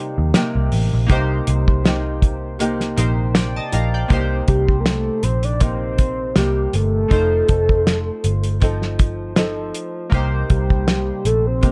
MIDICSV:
0, 0, Header, 1, 7, 480
1, 0, Start_track
1, 0, Tempo, 751880
1, 699, Time_signature, 4, 2, 24, 8
1, 7480, End_track
2, 0, Start_track
2, 0, Title_t, "Soft synth lead"
2, 0, Program_c, 0, 80
2, 0, Note_on_c, 0, 72, 108
2, 220, Note_off_c, 0, 72, 0
2, 2865, Note_on_c, 0, 67, 85
2, 3064, Note_on_c, 0, 70, 67
2, 3073, Note_off_c, 0, 67, 0
2, 3101, Note_on_c, 0, 69, 100
2, 3110, Note_off_c, 0, 70, 0
2, 3340, Note_on_c, 0, 72, 93
2, 3350, Note_off_c, 0, 69, 0
2, 3472, Note_on_c, 0, 74, 94
2, 3482, Note_off_c, 0, 72, 0
2, 3581, Note_on_c, 0, 72, 115
2, 3591, Note_off_c, 0, 74, 0
2, 4061, Note_off_c, 0, 72, 0
2, 4068, Note_on_c, 0, 67, 86
2, 4306, Note_on_c, 0, 69, 99
2, 4316, Note_off_c, 0, 67, 0
2, 5745, Note_off_c, 0, 69, 0
2, 6711, Note_on_c, 0, 67, 88
2, 7187, Note_on_c, 0, 69, 81
2, 7197, Note_off_c, 0, 67, 0
2, 7318, Note_on_c, 0, 72, 95
2, 7327, Note_off_c, 0, 69, 0
2, 7480, Note_off_c, 0, 72, 0
2, 7480, End_track
3, 0, Start_track
3, 0, Title_t, "Synth keys"
3, 0, Program_c, 1, 88
3, 0, Control_c, 1, 64, 127
3, 0, Note_on_c, 1, 58, 67
3, 0, Note_on_c, 1, 63, 61
3, 0, Note_on_c, 1, 67, 63
3, 0, Note_on_c, 1, 72, 77
3, 665, Note_off_c, 1, 58, 0
3, 670, Note_off_c, 1, 63, 0
3, 675, Note_off_c, 1, 67, 0
3, 680, Note_off_c, 1, 72, 0
3, 681, Note_on_c, 1, 58, 78
3, 691, Note_on_c, 1, 63, 70
3, 704, Note_on_c, 1, 67, 70
3, 706, Control_c, 1, 64, 0
3, 716, Note_on_c, 1, 72, 82
3, 831, Control_c, 1, 64, 127
3, 1866, Note_off_c, 1, 58, 0
3, 1871, Note_off_c, 1, 63, 0
3, 1878, Note_off_c, 1, 67, 0
3, 1883, Note_off_c, 1, 72, 0
3, 1893, Note_on_c, 1, 58, 58
3, 1899, Note_on_c, 1, 63, 54
3, 1902, Note_on_c, 1, 67, 51
3, 1909, Note_on_c, 1, 72, 62
3, 2138, Note_on_c, 1, 79, 60
3, 2143, Note_on_c, 1, 74, 50
3, 2264, Note_off_c, 1, 79, 0
3, 2266, Note_off_c, 1, 74, 0
3, 2274, Note_on_c, 1, 81, 70
3, 2279, Note_on_c, 1, 75, 52
3, 2375, Note_off_c, 1, 81, 0
3, 2378, Note_off_c, 1, 75, 0
3, 2381, Note_on_c, 1, 82, 62
3, 2386, Note_on_c, 1, 77, 54
3, 2506, Note_off_c, 1, 82, 0
3, 2508, Note_off_c, 1, 77, 0
3, 2515, Note_on_c, 1, 79, 60
3, 2518, Note_on_c, 1, 74, 51
3, 2598, Note_off_c, 1, 58, 0
3, 2605, Note_on_c, 1, 58, 68
3, 2609, Note_off_c, 1, 63, 0
3, 2617, Note_off_c, 1, 67, 0
3, 2617, Note_on_c, 1, 63, 65
3, 2624, Note_off_c, 1, 72, 0
3, 2625, Note_on_c, 1, 67, 67
3, 2628, Control_c, 1, 64, 0
3, 2637, Note_on_c, 1, 72, 76
3, 2741, Note_off_c, 1, 79, 0
3, 2743, Note_off_c, 1, 74, 0
3, 2743, Control_c, 1, 64, 127
3, 4508, Note_off_c, 1, 58, 0
3, 4514, Note_off_c, 1, 63, 0
3, 4518, Note_off_c, 1, 67, 0
3, 4523, Note_on_c, 1, 57, 58
3, 4524, Note_off_c, 1, 72, 0
3, 4532, Note_on_c, 1, 63, 56
3, 4543, Note_on_c, 1, 65, 55
3, 4549, Control_c, 1, 64, 0
3, 4554, Note_on_c, 1, 72, 66
3, 4652, Control_c, 1, 64, 127
3, 6428, Note_off_c, 1, 57, 0
3, 6433, Note_off_c, 1, 63, 0
3, 6438, Note_off_c, 1, 65, 0
3, 6444, Note_off_c, 1, 72, 0
3, 6445, Note_on_c, 1, 58, 73
3, 6455, Note_on_c, 1, 63, 66
3, 6466, Note_on_c, 1, 67, 66
3, 6470, Control_c, 1, 64, 0
3, 6476, Note_on_c, 1, 72, 79
3, 6574, Control_c, 1, 64, 127
3, 7480, Note_off_c, 1, 58, 0
3, 7480, Note_off_c, 1, 63, 0
3, 7480, Note_off_c, 1, 67, 0
3, 7480, Note_off_c, 1, 72, 0
3, 7480, End_track
4, 0, Start_track
4, 0, Title_t, "Nylon-string guitar"
4, 0, Program_c, 2, 24
4, 0, Note_on_c, 2, 48, 73
4, 0, Note_on_c, 2, 58, 62
4, 0, Note_on_c, 2, 63, 74
4, 0, Note_on_c, 2, 67, 78
4, 208, Note_off_c, 2, 48, 0
4, 216, Note_on_c, 2, 48, 72
4, 219, Note_off_c, 2, 58, 0
4, 222, Note_on_c, 2, 58, 76
4, 226, Note_off_c, 2, 63, 0
4, 228, Note_on_c, 2, 63, 78
4, 230, Note_off_c, 2, 67, 0
4, 232, Note_on_c, 2, 67, 75
4, 692, Note_off_c, 2, 48, 0
4, 699, Note_on_c, 2, 48, 75
4, 702, Note_off_c, 2, 58, 0
4, 704, Note_on_c, 2, 58, 76
4, 707, Note_off_c, 2, 63, 0
4, 707, Note_off_c, 2, 67, 0
4, 709, Note_on_c, 2, 63, 82
4, 710, Note_on_c, 2, 67, 78
4, 1169, Note_off_c, 2, 48, 0
4, 1177, Note_on_c, 2, 48, 57
4, 1180, Note_off_c, 2, 58, 0
4, 1183, Note_on_c, 2, 58, 60
4, 1187, Note_off_c, 2, 63, 0
4, 1190, Note_on_c, 2, 63, 66
4, 1191, Note_off_c, 2, 67, 0
4, 1194, Note_on_c, 2, 67, 63
4, 1647, Note_off_c, 2, 48, 0
4, 1655, Note_on_c, 2, 48, 86
4, 1657, Note_off_c, 2, 58, 0
4, 1660, Note_on_c, 2, 58, 86
4, 1661, Note_off_c, 2, 63, 0
4, 1664, Note_on_c, 2, 63, 94
4, 1665, Note_off_c, 2, 67, 0
4, 1667, Note_on_c, 2, 67, 98
4, 2372, Note_off_c, 2, 67, 0
4, 2375, Note_on_c, 2, 67, 52
4, 2377, Note_off_c, 2, 48, 0
4, 2383, Note_off_c, 2, 63, 0
4, 2386, Note_on_c, 2, 63, 50
4, 2391, Note_off_c, 2, 58, 0
4, 2394, Note_on_c, 2, 58, 43
4, 2610, Note_on_c, 2, 48, 72
4, 2613, Note_off_c, 2, 58, 0
4, 2617, Note_off_c, 2, 67, 0
4, 2621, Note_on_c, 2, 58, 67
4, 2623, Note_off_c, 2, 63, 0
4, 2630, Note_on_c, 2, 63, 69
4, 2637, Note_on_c, 2, 67, 85
4, 3567, Note_off_c, 2, 48, 0
4, 3575, Note_off_c, 2, 58, 0
4, 3575, Note_on_c, 2, 48, 56
4, 3583, Note_on_c, 2, 58, 55
4, 3584, Note_off_c, 2, 63, 0
4, 3584, Note_off_c, 2, 67, 0
4, 3587, Note_on_c, 2, 63, 64
4, 3592, Note_on_c, 2, 67, 56
4, 4049, Note_off_c, 2, 48, 0
4, 4054, Note_off_c, 2, 58, 0
4, 4057, Note_on_c, 2, 48, 54
4, 4062, Note_on_c, 2, 58, 57
4, 4066, Note_off_c, 2, 63, 0
4, 4066, Note_off_c, 2, 67, 0
4, 4069, Note_on_c, 2, 63, 64
4, 4073, Note_on_c, 2, 67, 66
4, 4536, Note_off_c, 2, 58, 0
4, 4536, Note_on_c, 2, 53, 67
4, 4539, Note_off_c, 2, 48, 0
4, 4539, Note_on_c, 2, 60, 71
4, 4540, Note_off_c, 2, 63, 0
4, 4543, Note_on_c, 2, 63, 70
4, 4544, Note_off_c, 2, 67, 0
4, 4546, Note_on_c, 2, 69, 75
4, 4766, Note_off_c, 2, 69, 0
4, 4774, Note_on_c, 2, 69, 49
4, 4777, Note_off_c, 2, 63, 0
4, 4779, Note_off_c, 2, 53, 0
4, 4780, Note_off_c, 2, 60, 0
4, 4785, Note_on_c, 2, 63, 43
4, 4793, Note_on_c, 2, 60, 39
4, 5492, Note_on_c, 2, 53, 68
4, 5496, Note_off_c, 2, 60, 0
4, 5498, Note_off_c, 2, 69, 0
4, 5499, Note_on_c, 2, 60, 63
4, 5501, Note_off_c, 2, 63, 0
4, 5504, Note_on_c, 2, 63, 68
4, 5509, Note_on_c, 2, 69, 70
4, 5966, Note_off_c, 2, 53, 0
4, 5973, Note_on_c, 2, 53, 65
4, 5977, Note_off_c, 2, 60, 0
4, 5980, Note_on_c, 2, 60, 64
4, 5983, Note_off_c, 2, 63, 0
4, 5983, Note_off_c, 2, 69, 0
4, 5985, Note_on_c, 2, 63, 77
4, 5990, Note_on_c, 2, 69, 73
4, 6451, Note_on_c, 2, 48, 76
4, 6458, Note_off_c, 2, 53, 0
4, 6460, Note_off_c, 2, 60, 0
4, 6462, Note_on_c, 2, 58, 77
4, 6467, Note_off_c, 2, 69, 0
4, 6468, Note_off_c, 2, 63, 0
4, 6471, Note_on_c, 2, 63, 74
4, 6477, Note_on_c, 2, 67, 84
4, 7406, Note_off_c, 2, 48, 0
4, 7412, Note_off_c, 2, 58, 0
4, 7413, Note_on_c, 2, 48, 52
4, 7420, Note_on_c, 2, 58, 56
4, 7423, Note_off_c, 2, 67, 0
4, 7424, Note_off_c, 2, 63, 0
4, 7426, Note_on_c, 2, 63, 61
4, 7431, Note_on_c, 2, 67, 60
4, 7480, Note_off_c, 2, 48, 0
4, 7480, Note_off_c, 2, 58, 0
4, 7480, Note_off_c, 2, 63, 0
4, 7480, Note_off_c, 2, 67, 0
4, 7480, End_track
5, 0, Start_track
5, 0, Title_t, "Analog synth pad"
5, 0, Program_c, 3, 89
5, 0, Note_on_c, 3, 48, 82
5, 0, Note_on_c, 3, 55, 76
5, 0, Note_on_c, 3, 58, 75
5, 0, Note_on_c, 3, 63, 91
5, 672, Note_off_c, 3, 63, 0
5, 673, Note_off_c, 3, 48, 0
5, 673, Note_off_c, 3, 58, 0
5, 679, Note_off_c, 3, 55, 0
5, 7480, End_track
6, 0, Start_track
6, 0, Title_t, "Picked electric bass"
6, 0, Program_c, 4, 34
6, 115, Note_on_c, 4, 39, 85
6, 200, Note_off_c, 4, 39, 0
6, 354, Note_on_c, 4, 36, 76
6, 439, Note_off_c, 4, 36, 0
6, 464, Note_on_c, 4, 33, 79
6, 567, Note_off_c, 4, 33, 0
6, 596, Note_on_c, 4, 34, 90
6, 680, Note_off_c, 4, 34, 0
6, 701, Note_on_c, 4, 36, 106
6, 892, Note_off_c, 4, 36, 0
6, 943, Note_on_c, 4, 36, 92
6, 1876, Note_off_c, 4, 36, 0
6, 1902, Note_on_c, 4, 34, 78
6, 2285, Note_off_c, 4, 34, 0
6, 2383, Note_on_c, 4, 34, 83
6, 2574, Note_off_c, 4, 34, 0
6, 2621, Note_on_c, 4, 36, 100
6, 2812, Note_off_c, 4, 36, 0
6, 2863, Note_on_c, 4, 36, 87
6, 3246, Note_off_c, 4, 36, 0
6, 3342, Note_on_c, 4, 34, 77
6, 4036, Note_off_c, 4, 34, 0
6, 4062, Note_on_c, 4, 36, 88
6, 4254, Note_off_c, 4, 36, 0
6, 4301, Note_on_c, 4, 31, 86
6, 4493, Note_off_c, 4, 31, 0
6, 4541, Note_on_c, 4, 29, 95
6, 4733, Note_off_c, 4, 29, 0
6, 4783, Note_on_c, 4, 29, 80
6, 5167, Note_off_c, 4, 29, 0
6, 5263, Note_on_c, 4, 31, 86
6, 6198, Note_off_c, 4, 31, 0
6, 6463, Note_on_c, 4, 36, 96
6, 6655, Note_off_c, 4, 36, 0
6, 6706, Note_on_c, 4, 36, 90
6, 7089, Note_off_c, 4, 36, 0
6, 7183, Note_on_c, 4, 34, 83
6, 7480, Note_off_c, 4, 34, 0
6, 7480, End_track
7, 0, Start_track
7, 0, Title_t, "Drums"
7, 218, Note_on_c, 9, 38, 122
7, 219, Note_on_c, 9, 42, 96
7, 281, Note_off_c, 9, 38, 0
7, 283, Note_off_c, 9, 42, 0
7, 458, Note_on_c, 9, 46, 51
7, 522, Note_off_c, 9, 46, 0
7, 699, Note_on_c, 9, 42, 70
7, 700, Note_on_c, 9, 36, 99
7, 763, Note_off_c, 9, 42, 0
7, 764, Note_off_c, 9, 36, 0
7, 940, Note_on_c, 9, 42, 61
7, 1003, Note_off_c, 9, 42, 0
7, 1072, Note_on_c, 9, 36, 93
7, 1136, Note_off_c, 9, 36, 0
7, 1184, Note_on_c, 9, 38, 108
7, 1185, Note_on_c, 9, 42, 89
7, 1248, Note_off_c, 9, 38, 0
7, 1249, Note_off_c, 9, 42, 0
7, 1419, Note_on_c, 9, 36, 78
7, 1421, Note_on_c, 9, 42, 66
7, 1483, Note_off_c, 9, 36, 0
7, 1485, Note_off_c, 9, 42, 0
7, 1661, Note_on_c, 9, 42, 82
7, 1725, Note_off_c, 9, 42, 0
7, 1790, Note_on_c, 9, 38, 34
7, 1795, Note_on_c, 9, 42, 44
7, 1854, Note_off_c, 9, 38, 0
7, 1858, Note_off_c, 9, 42, 0
7, 1899, Note_on_c, 9, 42, 70
7, 1963, Note_off_c, 9, 42, 0
7, 2137, Note_on_c, 9, 38, 111
7, 2139, Note_on_c, 9, 42, 93
7, 2201, Note_off_c, 9, 38, 0
7, 2203, Note_off_c, 9, 42, 0
7, 2378, Note_on_c, 9, 42, 61
7, 2442, Note_off_c, 9, 42, 0
7, 2619, Note_on_c, 9, 42, 66
7, 2620, Note_on_c, 9, 36, 89
7, 2682, Note_off_c, 9, 42, 0
7, 2684, Note_off_c, 9, 36, 0
7, 2858, Note_on_c, 9, 42, 60
7, 2862, Note_on_c, 9, 36, 85
7, 2922, Note_off_c, 9, 42, 0
7, 2926, Note_off_c, 9, 36, 0
7, 2991, Note_on_c, 9, 36, 89
7, 3055, Note_off_c, 9, 36, 0
7, 3101, Note_on_c, 9, 38, 96
7, 3101, Note_on_c, 9, 42, 83
7, 3164, Note_off_c, 9, 38, 0
7, 3165, Note_off_c, 9, 42, 0
7, 3338, Note_on_c, 9, 42, 69
7, 3402, Note_off_c, 9, 42, 0
7, 3466, Note_on_c, 9, 42, 50
7, 3530, Note_off_c, 9, 42, 0
7, 3578, Note_on_c, 9, 42, 78
7, 3583, Note_on_c, 9, 36, 82
7, 3642, Note_off_c, 9, 42, 0
7, 3647, Note_off_c, 9, 36, 0
7, 3820, Note_on_c, 9, 42, 67
7, 3822, Note_on_c, 9, 36, 85
7, 3884, Note_off_c, 9, 42, 0
7, 3886, Note_off_c, 9, 36, 0
7, 4058, Note_on_c, 9, 38, 109
7, 4060, Note_on_c, 9, 42, 92
7, 4122, Note_off_c, 9, 38, 0
7, 4124, Note_off_c, 9, 42, 0
7, 4299, Note_on_c, 9, 42, 62
7, 4363, Note_off_c, 9, 42, 0
7, 4539, Note_on_c, 9, 42, 64
7, 4540, Note_on_c, 9, 36, 90
7, 4603, Note_off_c, 9, 42, 0
7, 4604, Note_off_c, 9, 36, 0
7, 4778, Note_on_c, 9, 42, 57
7, 4783, Note_on_c, 9, 36, 90
7, 4842, Note_off_c, 9, 42, 0
7, 4846, Note_off_c, 9, 36, 0
7, 4911, Note_on_c, 9, 36, 88
7, 4975, Note_off_c, 9, 36, 0
7, 5023, Note_on_c, 9, 38, 101
7, 5024, Note_on_c, 9, 42, 89
7, 5087, Note_off_c, 9, 38, 0
7, 5088, Note_off_c, 9, 42, 0
7, 5260, Note_on_c, 9, 42, 65
7, 5324, Note_off_c, 9, 42, 0
7, 5385, Note_on_c, 9, 42, 46
7, 5449, Note_off_c, 9, 42, 0
7, 5501, Note_on_c, 9, 42, 76
7, 5504, Note_on_c, 9, 36, 75
7, 5564, Note_off_c, 9, 42, 0
7, 5568, Note_off_c, 9, 36, 0
7, 5631, Note_on_c, 9, 38, 32
7, 5695, Note_off_c, 9, 38, 0
7, 5740, Note_on_c, 9, 42, 70
7, 5743, Note_on_c, 9, 36, 87
7, 5804, Note_off_c, 9, 42, 0
7, 5807, Note_off_c, 9, 36, 0
7, 5977, Note_on_c, 9, 38, 112
7, 5979, Note_on_c, 9, 42, 92
7, 6041, Note_off_c, 9, 38, 0
7, 6043, Note_off_c, 9, 42, 0
7, 6221, Note_on_c, 9, 42, 64
7, 6285, Note_off_c, 9, 42, 0
7, 6462, Note_on_c, 9, 36, 95
7, 6463, Note_on_c, 9, 42, 66
7, 6526, Note_off_c, 9, 36, 0
7, 6527, Note_off_c, 9, 42, 0
7, 6701, Note_on_c, 9, 42, 57
7, 6704, Note_on_c, 9, 36, 84
7, 6765, Note_off_c, 9, 42, 0
7, 6768, Note_off_c, 9, 36, 0
7, 6833, Note_on_c, 9, 36, 88
7, 6897, Note_off_c, 9, 36, 0
7, 6944, Note_on_c, 9, 38, 108
7, 6945, Note_on_c, 9, 42, 90
7, 7008, Note_off_c, 9, 38, 0
7, 7009, Note_off_c, 9, 42, 0
7, 7184, Note_on_c, 9, 42, 66
7, 7248, Note_off_c, 9, 42, 0
7, 7423, Note_on_c, 9, 42, 82
7, 7426, Note_on_c, 9, 36, 80
7, 7480, Note_off_c, 9, 36, 0
7, 7480, Note_off_c, 9, 42, 0
7, 7480, End_track
0, 0, End_of_file